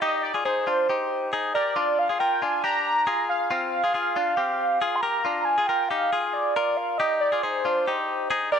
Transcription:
0.01 clean electric guitar D#4 G4, soft synth lead D#5
0.23 soft synth lead D5
0.34 clean electric guitar F4 G#4
0.45 clean electric guitar D#4 G#4, soft synth lead C5
0.67 clean electric guitar D4 F4
0.89 clean electric guitar D#4 G4
1.33 clean electric guitar D#4 G#4
1.54 clean electric guitar G4 A#4, soft synth lead D5
1.76 clean electric guitar D4 F4
1.99 soft synth lead F5
2.09 clean electric guitar F4 G#4
2.19 clean electric guitar F4 A#4, soft synth lead G5
2.42 clean electric guitar D4 F4, soft synth lead G#5
2.64 clean electric guitar D4 G4, soft synth lead A#5
3.07 clean electric guitar F4 G#4
3.29 soft synth lead F5
3.51 clean electric guitar C4 F4
3.84 clean electric guitar F4 G#4
3.94 clean electric guitar F4 G#4
4.16 clean electric guitar D4 F4
4.37 clean electric guitar C4 G4
4.82 clean electric guitar F4 G#4
4.95 soft synth lead C6
5.01 clean electric guitar G4 A#4, soft synth lead A#5
5.25 clean electric guitar D4 F4
5.45 soft synth lead G#5
5.58 clean electric guitar F4 G#4
5.66 clean electric guitar F4 A#4, soft synth lead G5
5.89 clean electric guitar D#4 G4, soft synth lead F5
6.13 clean electric guitar F4 G#4
6.33 soft synth lead D5
6.56 clean electric guitar F4 A#4
6.77 soft synth lead F5
6.98 clean electric guitar D#4 G4, soft synth lead D#5
7.21 soft synth lead D5
7.32 clean electric guitar F4 G#4
7.43 clean electric guitar D#4 G#4, soft synth lead C5
7.65 clean electric guitar D4 F4
7.87 clean electric guitar D#4 G4
8.30 clean electric guitar D#4 G#4
8.52 clean electric guitar G4 A#4, soft synth lead D5

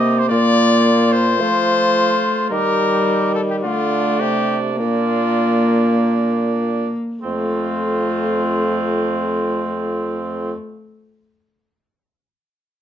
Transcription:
Already playing: bassoon C3, viola A#3, cor anglais G4, cornet D#5
0.19 cornet C5
0.28 bassoon A#2, viola A#3, cor anglais F4, cornet D5
1.12 cornet C5
1.40 bassoon F3, viola A3, cor anglais F4
2.50 bassoon D#3, viola G3, cor anglais G4, cornet A#4
3.35 cornet A4
3.50 cornet G4
3.63 bassoon D3, viola A3, cor anglais D4, cornet F4
4.20 bassoon C3, cornet G4
4.78 bassoon A#2, viola A#3, cor anglais D4, cornet F4
7.22 bassoon F2, viola A3, cor anglais C4, cornet F4

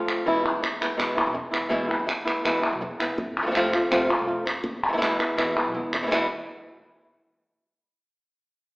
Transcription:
Already playing: nylon-string guitar F3 A3 C4 F4
0.08 clap
0.26 upright bass E2, nylon-string guitar B2 E3 G#3 B3 E4
0.45 nylon-string guitar G#3 B3 E4, clap
0.53 upright bass E2
0.62 muted nylon-string guitar stroke, clap
0.81 nylon-string guitar G#3 B3 E4, clap
0.97 upright bass E2, nylon-string guitar B2 E3 G#3 B3 E4, clap
1.17 nylon-string guitar G#3 B3 E4, clap
1.27 upright bass B1
1.33 upright bass E2, muted nylon-string guitar stroke
1.51 nylon-string guitar G#3 B3 E4, clap
1.69 upright bass E2, nylon-string guitar B2 E3 G#3 B3 E4
1.88 nylon-string guitar G#3 B3 E4, clap
2.00 upright bass E2
2.07 muted nylon-string guitar stroke, clap
2.25 nylon-string guitar G#3 B3 E4, clap
2.44 upright bass E2, nylon-string guitar B2 E3 G#3 B3 E4, clap
2.62 nylon-string guitar G#3 B3 E4, clap
2.72 upright bass B1
2.81 upright bass E2, muted nylon-string guitar stroke
2.99 nylon-string guitar G#3 B3 E4, clap
3.18 upright bass F2, muted nylon-string guitar stroke
3.42 nylon-string guitar F3 A3 C4 F4
3.46 upright bass F2, nylon-string guitar F3 A3 C4 F4
3.51 nylon-string guitar F3 A3 C4 F4
3.55 nylon-string guitar C3 F3 A3 C4 F4, clap
3.73 nylon-string guitar A3 C4 F4, clap
3.91 upright bass F2, nylon-string guitar C3 F3 A3 C4 F4, clap
4.09 nylon-string guitar A3 C4 F4
4.19 upright bass C2
4.27 upright bass F2, nylon-string guitar A3 C4 F4
4.46 muted nylon-string guitar stroke, clap
4.64 upright bass E2, muted nylon-string guitar stroke
4.88 nylon-string guitar E3 G#3 B3 E4
4.93 upright bass E2, nylon-string guitar E3 G#3 B3 E4
4.97 nylon-string guitar E3 G#3 B3 E4
5.02 nylon-string guitar B2 E3 G#3 B3 E4, clap
5.19 nylon-string guitar G#3 B3 E4, clap
5.37 upright bass E2, nylon-string guitar B2 E3 G#3 B3 E4, clap
5.56 nylon-string guitar G#3 B3 E4
5.65 upright bass B1
5.75 upright bass E2, nylon-string guitar G#3 B3 E4
5.93 muted nylon-string guitar stroke, clap
6.02 nylon-string guitar B2 E3 G#3 B3 E4
6.07 upright bass E2, nylon-string guitar B2 E3 G#3 B3 E4
6.11 nylon-string guitar E2 B2 E3 G#3 B3 E4, clap

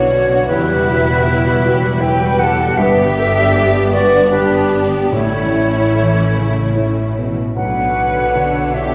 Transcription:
Already playing: grand piano B1 B3 D4 F#4, double bass section B1, cello section B2, harp B2 D3 A#3 B3 D4 C#5 C#6, viola section F#3 D4, french horn section E4, violin section F#4, flute C#5
0.11 viola section D3 C#4, violin section D4, french horn section F#4
0.23 harp C#3
0.29 viola section F#3 D4, violin section F#4
0.47 double bass section E1, harp E2, cello section E2, grand piano E2, viola section F#3 E4, violin section E4 G4, french horn section G4, flute B4
0.67 viola section G3 G4, violin section F#4
0.74 harp B2
0.87 viola section F#3 E4, french horn section F#4, violin section G4
1.01 harp B3
1.06 viola section G3 G4, violin section F#4
1.25 viola section F#3 E4, harp G3, grand piano B3, french horn section E4, violin section G4
1.44 viola section G3 G4, violin section F#4
1.52 harp E5
1.64 viola section F#3 E4, french horn section F#4, violin section G4
1.77 harp E4
1.83 viola section G3 G4, violin section F#4
2.01 viola section F#3 E4, french horn section G4, grand piano G4 B4, violin section G4 B4, harp E5, flute G5
2.20 viola section G3 G4, violin section F#4
2.29 harp B4
2.39 viola section F#3 E4, violin section G4 A4, flute F#5
2.54 harp B2
2.59 viola section G3 G4, violin section F#4
2.77 double bass section G1, grand piano G2, cello section G2, harp G2, viola section B3 D4, violin section G4, french horn section B4, flute E5
3.05 harp D3
3.17 french horn section A4
3.29 harp B3
3.53 grand piano B3, harp D4, french horn section G4
3.80 harp D5
3.92 violin section F#4, french horn section B4, flute D5
4.06 harp G4
4.31 viola section B3 D4, violin section D4, french horn section G4, grand piano G4 B4, flute B4, harp D5
4.35 violin section G4
4.60 harp G4
4.87 harp D3
5.12 double bass section A1, grand piano A2, cello section A2, harp A2, viola section A3 C#4, french horn section E4, violin section E4, flute C#5
5.42 harp E3
5.69 harp A3
5.95 cello section E3, grand piano A3, harp E4
6.23 harp C#5
6.36 cello section C#3
6.51 harp E4
6.75 cello section A2, grand piano E4 C#5, harp C#5
7.04 harp E4
7.17 cello section B2
7.32 harp E3
7.56 double bass section B1, grand piano B1, cello section B2, harp B2, viola section D3 C#5, violin section D4 B4, french horn section F#4, flute F#5
7.84 harp B3
8.10 harp D3
8.35 grand piano D3, french horn section D4, harp D4
8.62 harp C#5
8.74 french horn section E4, violin section G4, flute E5
8.88 harp D4

